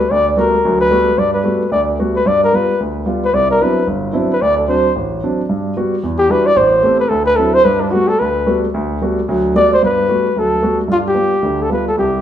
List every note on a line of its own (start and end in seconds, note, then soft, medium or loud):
0.00 0.13 B4 medium
0.11 0.33 D2 medium
0.11 0.27 D5 loud
0.37 0.54 G3 medium
0.37 0.54 A3 medium
0.37 0.54 B3 medium
0.37 0.55 F#4 medium
0.37 0.78 A#4 medium
0.65 0.87 D2 medium
0.65 0.87 F#3 medium
0.81 1.20 B4 loud
0.91 1.08 G3 medium
0.91 1.08 A3 medium
0.91 1.08 B3 medium
0.91 1.09 F#4 medium
1.18 1.41 G2 medium
1.18 1.33 D5 medium
1.34 1.69 B4 medium
1.43 1.61 G3 medium
1.43 1.62 A3 medium
1.43 1.62 B3 soft
1.43 1.62 F#4 medium
1.71 1.94 D2 medium
1.71 1.82 D5 medium
1.99 2.16 G3 medium
1.99 2.16 A3 soft
1.99 2.16 B3 medium
1.99 2.17 F#4 medium
2.16 2.29 B4 loud
2.26 2.49 G2 medium
2.26 2.43 D5 loud
2.44 2.57 A#4 loud
2.52 2.70 G3 medium
2.52 2.70 B3 medium
2.52 2.70 F4 medium
2.52 2.81 B4 medium
2.80 3.03 D2 medium
3.06 3.23 G3 medium
3.06 3.24 B3 medium
3.06 3.24 F4 medium
3.25 3.36 B4 loud
3.33 3.56 C2 medium
3.33 3.50 D5 loud
3.51 3.64 A#4 loud
3.61 3.78 F#3 medium
3.61 3.78 B3 medium
3.61 3.78 C4 medium
3.61 3.78 D4 medium
3.61 3.78 E4 medium
3.61 3.88 B4 medium
3.87 4.10 G1 medium
4.13 4.31 F#3 medium
4.13 4.31 B3 medium
4.13 4.31 C4 medium
4.13 4.31 D4 medium
4.13 4.31 E4 medium
4.33 4.43 B4 medium
4.42 4.65 D2 medium
4.42 4.57 D5 loud
4.58 4.70 A4 medium
4.68 4.86 F#3 medium
4.68 4.86 C4 medium
4.68 4.86 D4 medium
4.68 4.95 C5 medium
4.96 5.19 A1 medium
5.23 5.40 F#3 medium
5.23 5.40 C4 medium
5.23 5.40 D4 medium
5.49 5.72 G2 medium
5.77 5.94 G3 medium
5.77 5.94 B3 soft
5.77 5.94 F#4 medium
6.03 6.26 E2 medium
6.18 6.33 G4 loud
6.29 6.47 G3 medium
6.29 6.47 D4 medium
6.29 6.47 E4 medium
6.29 6.47 F#4 medium
6.29 6.48 B4 loud
6.46 6.58 D5 loud
6.56 6.80 A1 medium
6.56 6.99 C5 medium
6.83 7.01 A3 medium
6.83 7.01 B3 medium
6.83 7.01 C4 medium
6.83 7.01 G4 medium
7.00 7.11 B4 loud
7.09 7.34 D2 medium
7.09 7.25 A4 medium
7.26 7.38 B4 loud
7.36 7.55 F#3 medium
7.36 7.55 C4 medium
7.36 7.55 D4 medium
7.36 7.55 E4 medium
7.36 7.56 A4 medium
7.54 7.66 C5 loud
7.65 7.88 G2 medium
7.65 7.82 B4 loud
7.81 7.92 D4 medium
7.91 8.10 G3 medium
7.91 8.09 A3 medium
7.91 8.10 B3 medium
7.91 8.10 F#4 medium
8.08 8.21 A4 loud
8.19 8.43 D2 medium
8.19 8.63 B4 medium
8.46 8.64 G3 medium
8.46 8.64 A3 medium
8.46 8.64 B3 medium
8.46 8.64 F#4 medium
8.74 8.97 D2 medium
9.02 9.18 G3 medium
9.02 9.18 A3 medium
9.02 9.19 B3 medium
9.02 9.19 F#4 medium
9.28 9.51 D2 medium
9.28 9.51 F#3 medium
9.54 9.72 G3 medium
9.54 9.72 A3 medium
9.54 9.72 B3 medium
9.54 9.72 F#4 medium
9.54 9.70 D5 loud
9.73 9.82 C5 loud
9.83 10.05 G2 medium
9.83 10.05 B3 medium
9.83 10.41 B4 medium
10.08 10.26 G3 soft
10.08 10.26 A3 soft
10.08 10.26 B3 soft
10.08 10.26 F#4 medium
10.36 10.59 D2 medium
10.36 10.59 F#3 medium
10.36 10.80 A4 medium
10.62 10.80 G3 medium
10.62 10.80 A3 soft
10.62 10.80 B3 soft
10.62 10.80 F#4 medium
10.88 11.12 G2 medium
10.88 10.98 F4 medium
11.08 11.64 G4 medium
11.14 11.33 G3 medium
11.14 11.33 B3 soft
11.14 11.33 F4 medium
11.42 11.66 D2 medium
11.42 11.66 D3 medium
11.63 11.72 A4 medium
11.70 11.88 G3 medium
11.70 11.87 B3 medium
11.70 11.88 F4 medium
11.70 11.87 B4 medium
11.88 11.97 A4 medium
11.98 12.21 C2 medium
11.98 12.21 G4 medium